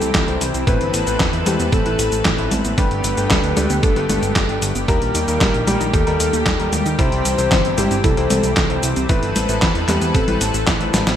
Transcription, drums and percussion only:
0.02 closed hi-hat soft
0.02 cabasa soft
0.15 kick loud
0.15 snare loud
0.15 clap medium
0.15 closed hi-hat medium
0.15 cabasa soft
0.28 closed hi-hat soft
0.41 closed hi-hat medium
0.41 cabasa medium
0.54 closed hi-hat soft
0.54 cabasa soft
0.67 kick loud
0.67 closed hi-hat medium
0.67 cabasa soft
0.81 closed hi-hat soft
0.94 closed hi-hat medium
0.94 cabasa medium
1.07 closed hi-hat soft
1.07 cabasa soft
1.20 kick loud
1.20 snare loud
1.20 clap medium
1.20 closed hi-hat medium
1.20 cabasa soft
1.33 closed hi-hat soft
1.46 closed hi-hat medium
1.46 high conga medium
1.46 cabasa medium
1.60 closed hi-hat soft
1.60 cabasa soft
1.73 kick loud
1.73 closed hi-hat medium
1.73 cabasa soft
1.86 closed hi-hat soft
1.99 closed hi-hat medium
1.99 cabasa medium
2.12 closed hi-hat soft
2.12 cabasa soft
2.25 kick loud
2.25 snare loud
2.25 clap medium
2.25 closed hi-hat medium
2.25 cabasa soft
2.38 closed hi-hat soft
2.51 closed hi-hat medium
2.51 high conga medium
2.51 cabasa medium
2.65 closed hi-hat soft
2.65 cabasa soft
2.78 kick loud
2.78 closed hi-hat medium
2.78 cabasa soft
2.91 closed hi-hat soft
3.04 closed hi-hat medium
3.04 cabasa medium
3.17 closed hi-hat soft
3.17 cabasa soft
3.30 kick loud
3.30 snare loud
3.30 clap medium
3.30 closed hi-hat medium
3.30 cabasa soft
3.44 closed hi-hat soft
3.57 closed hi-hat medium
3.57 high conga medium
3.57 cabasa medium
3.70 closed hi-hat soft
3.70 cabasa soft
3.83 kick loud
3.83 closed hi-hat medium
3.83 cabasa soft
3.96 closed hi-hat soft
4.10 closed hi-hat medium
4.10 high conga medium
4.10 cabasa medium
4.23 closed hi-hat soft
4.23 cabasa soft
4.36 kick loud
4.36 snare loud
4.36 clap medium
4.36 closed hi-hat medium
4.36 cabasa soft
4.49 closed hi-hat soft
4.62 closed hi-hat medium
4.62 cabasa medium
4.75 closed hi-hat soft
4.75 cabasa soft
4.88 kick loud
4.88 closed hi-hat medium
4.88 cabasa soft
5.02 closed hi-hat soft
5.15 closed hi-hat medium
5.15 cabasa medium
5.28 closed hi-hat soft
5.28 cabasa soft
5.41 kick loud
5.41 snare loud
5.41 clap medium
5.41 closed hi-hat medium
5.41 cabasa soft
5.54 closed hi-hat soft
5.68 closed hi-hat medium
5.68 high conga medium
5.68 cabasa medium
5.81 closed hi-hat soft
5.81 cabasa soft
5.94 kick loud
5.94 closed hi-hat medium
5.94 cabasa soft
6.07 closed hi-hat soft
6.20 closed hi-hat loud
6.20 cabasa medium
6.33 closed hi-hat soft
6.33 cabasa soft
6.46 kick loud
6.46 snare loud
6.46 clap medium
6.46 closed hi-hat medium
6.46 cabasa soft
6.60 closed hi-hat soft
6.73 closed hi-hat medium
6.73 high conga medium
6.73 cabasa medium
6.86 closed hi-hat soft
6.86 cabasa soft
6.99 kick loud
6.99 closed hi-hat medium
6.99 cabasa soft
7.12 closed hi-hat soft
7.25 closed hi-hat medium
7.25 cabasa medium
7.38 closed hi-hat soft
7.38 cabasa soft
7.51 kick loud
7.51 snare loud
7.51 clap medium
7.51 closed hi-hat medium
7.51 cabasa soft
7.65 closed hi-hat soft
7.78 closed hi-hat medium
7.78 high conga medium
7.78 cabasa medium
7.91 closed hi-hat soft
7.91 cabasa soft
8.04 kick loud
8.04 closed hi-hat medium
8.04 cabasa soft
8.17 closed hi-hat soft
8.30 closed hi-hat loud
8.30 high conga medium
8.30 cabasa medium
8.44 closed hi-hat soft
8.44 cabasa soft
8.57 kick loud
8.57 snare loud
8.57 clap medium
8.57 closed hi-hat medium
8.57 cabasa soft
8.70 closed hi-hat soft
8.83 closed hi-hat loud
8.83 cabasa medium
8.96 closed hi-hat soft
8.96 cabasa soft
9.09 kick loud
9.09 closed hi-hat medium
9.09 cabasa soft
9.23 closed hi-hat soft
9.36 closed hi-hat loud
9.36 high conga medium
9.36 cabasa medium
9.49 closed hi-hat soft
9.49 cabasa soft
9.62 kick loud
9.62 snare loud
9.62 clap medium
9.62 closed hi-hat medium
9.62 cabasa soft
9.75 closed hi-hat soft
9.88 clap medium
9.88 closed hi-hat loud
9.88 high conga medium
9.88 cabasa medium
10.02 closed hi-hat soft
10.02 cabasa soft
10.15 kick loud
10.15 closed hi-hat medium
10.15 cabasa soft
10.28 closed hi-hat soft
10.28 high conga medium
10.41 closed hi-hat loud
10.41 cabasa medium
10.54 closed hi-hat soft
10.54 cabasa soft
10.67 kick loud
10.67 snare loud
10.67 clap medium
10.67 closed hi-hat medium
10.67 cabasa soft
10.81 closed hi-hat soft
10.94 snare medium
10.94 closed hi-hat loud
10.94 high conga medium
10.94 cabasa medium
11.07 snare loud
11.07 closed hi-hat soft
11.07 cabasa soft

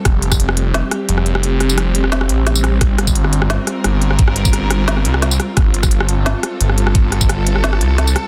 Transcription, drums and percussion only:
0.05 kick loud
0.05 cross-stick medium
0.05 closed hi-hat medium
0.22 closed hi-hat medium
0.32 kick medium
0.32 cross-stick medium
0.32 tambourine medium
0.40 closed hi-hat medium
0.49 cross-stick medium
0.57 closed hi-hat medium
0.74 cross-stick medium
0.74 snare loud
0.74 closed hi-hat medium
0.91 cross-stick medium
0.91 closed hi-hat medium
1.09 closed hi-hat medium
1.18 cross-stick medium
1.26 closed hi-hat soft
1.35 cross-stick medium
1.43 closed hi-hat medium
1.60 cross-stick medium
1.60 closed hi-hat medium
1.69 tambourine medium
1.78 cross-stick medium
1.78 closed hi-hat medium
1.95 closed hi-hat medium
2.04 cross-stick medium
2.12 snare loud
2.12 closed hi-hat medium
2.21 cross-stick medium
2.29 closed hi-hat medium
2.47 cross-stick medium
2.47 snare medium
2.47 closed hi-hat medium
2.55 tambourine medium
2.64 cross-stick medium
2.64 closed hi-hat soft
2.81 kick loud
2.81 cross-stick medium
2.81 closed hi-hat medium
2.98 cross-stick medium
2.98 closed hi-hat medium
3.07 kick medium
3.07 tambourine medium
3.15 closed hi-hat medium
3.24 cross-stick medium
3.33 closed hi-hat medium
3.42 cross-stick medium
3.50 snare loud
3.50 closed hi-hat medium
3.67 cross-stick medium
3.67 closed hi-hat medium
3.84 cross-stick medium
3.84 closed hi-hat medium
4.02 closed hi-hat soft
4.11 cross-stick medium
4.19 kick loud
4.19 closed hi-hat medium
4.28 cross-stick medium
4.36 closed hi-hat medium
4.45 kick medium
4.45 tambourine medium
4.53 cross-stick medium
4.53 closed hi-hat medium
4.71 cross-stick medium
4.71 closed hi-hat medium
4.88 snare loud
4.88 closed hi-hat medium
4.97 cross-stick medium
5.05 closed hi-hat medium
5.14 cross-stick medium
5.22 snare medium
5.22 closed hi-hat medium
5.31 tambourine medium
5.40 cross-stick medium
5.40 closed hi-hat soft
5.57 kick loud
5.57 cross-stick medium
5.57 closed hi-hat medium
5.74 closed hi-hat medium
5.83 kick medium
5.83 cross-stick medium
5.83 tambourine medium
5.91 closed hi-hat medium
6.00 cross-stick medium
6.09 closed hi-hat medium
6.26 cross-stick medium
6.26 snare loud
6.26 closed hi-hat medium
6.43 cross-stick medium
6.43 closed hi-hat medium
6.61 closed hi-hat medium
6.70 cross-stick soft
6.78 closed hi-hat soft
6.87 cross-stick medium
6.95 kick loud
6.95 closed hi-hat medium
7.12 cross-stick medium
7.12 closed hi-hat medium
7.21 kick medium
7.21 tambourine medium
7.29 cross-stick medium
7.29 closed hi-hat medium
7.47 closed hi-hat medium
7.56 cross-stick soft
7.64 snare loud
7.64 closed hi-hat medium
7.73 cross-stick medium
7.81 closed hi-hat medium
7.98 cross-stick soft
7.98 snare medium
7.98 closed hi-hat medium
8.07 tambourine medium
8.16 cross-stick medium
8.16 closed hi-hat soft

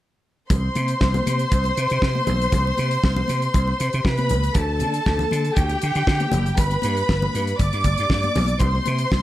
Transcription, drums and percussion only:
0.50 kick loud
0.50 closed hi-hat medium
0.50 muted conga soft
0.50 low conga medium
0.75 closed hi-hat medium
0.75 high conga medium
0.88 closed hi-hat soft
1.01 kick medium
1.01 snare loud
1.01 muted conga soft
1.14 closed hi-hat soft
1.14 muted conga soft
1.14 high conga medium
1.14 low conga medium
1.27 closed hi-hat medium
1.27 high conga medium
1.39 closed hi-hat soft
1.52 kick loud
1.52 closed hi-hat medium
1.64 closed hi-hat soft
1.64 muted conga soft
1.77 closed hi-hat medium
1.90 closed hi-hat soft
2.02 kick loud
2.02 snare medium
2.15 high conga medium
2.27 closed hi-hat medium
2.27 high conga medium
2.27 low conga medium
2.41 closed hi-hat soft
2.52 kick medium
2.52 closed hi-hat medium
2.52 muted conga soft
2.52 low conga medium
2.67 muted conga soft
2.77 closed hi-hat medium
2.77 high conga medium
2.91 closed hi-hat soft
3.04 kick loud
3.04 snare loud
3.04 muted conga soft
3.16 high conga medium
3.16 low conga medium
3.28 closed hi-hat medium
3.28 high conga medium
3.42 closed hi-hat soft
3.54 kick loud
3.54 closed hi-hat medium
3.54 muted conga soft
3.68 muted conga soft
3.80 closed hi-hat medium
3.93 closed hi-hat soft
4.05 kick medium
4.05 snare loud
4.17 closed hi-hat soft
4.17 muted conga soft
4.17 high conga medium
4.29 closed hi-hat medium
4.29 high conga medium
4.29 low conga medium
4.43 closed hi-hat soft
4.54 kick loud
4.54 closed hi-hat medium
4.54 low conga medium
4.79 closed hi-hat medium
4.79 high conga medium
4.94 closed hi-hat soft
5.06 kick loud
5.06 snare medium
5.06 muted conga soft
5.19 closed hi-hat soft
5.19 muted conga soft
5.19 high conga medium
5.19 low conga medium
5.31 closed hi-hat medium
5.31 high conga medium
5.45 closed hi-hat soft
5.56 kick loud
5.56 closed hi-hat medium
5.69 closed hi-hat soft
5.69 muted conga soft
5.82 closed hi-hat medium
5.95 closed hi-hat soft
6.07 kick loud
6.07 snare medium
6.20 closed hi-hat soft
6.20 high conga medium
6.32 closed hi-hat medium
6.32 high conga medium
6.32 low conga medium
6.46 closed hi-hat soft
6.57 kick loud
6.57 closed hi-hat medium
6.57 low conga medium
6.71 closed hi-hat soft
6.71 muted conga soft
6.82 closed hi-hat medium
6.82 high conga medium
6.97 closed hi-hat soft
7.09 kick loud
7.09 snare loud
7.09 muted conga soft
7.22 high conga medium
7.22 low conga medium
7.35 closed hi-hat medium
7.35 high conga medium
7.47 closed hi-hat soft
7.59 kick loud
7.59 closed hi-hat medium
7.59 muted conga soft
7.73 closed hi-hat soft
7.73 muted conga soft
7.84 kick medium
7.84 closed hi-hat medium
7.84 high conga medium
7.97 closed hi-hat soft
8.10 kick medium
8.10 snare medium
8.10 muted conga soft
8.23 closed hi-hat soft
8.23 high conga medium
8.35 snare soft
8.35 open hi-hat medium
8.35 high conga medium
8.35 low conga medium
8.48 closed hi-hat soft
8.59 kick loud
8.59 closed hi-hat medium
8.59 muted conga soft
8.59 low conga medium
8.75 muted conga soft
8.85 closed hi-hat medium
8.85 high conga medium
8.98 closed hi-hat soft
9.12 kick loud
9.12 snare loud
9.12 muted conga soft

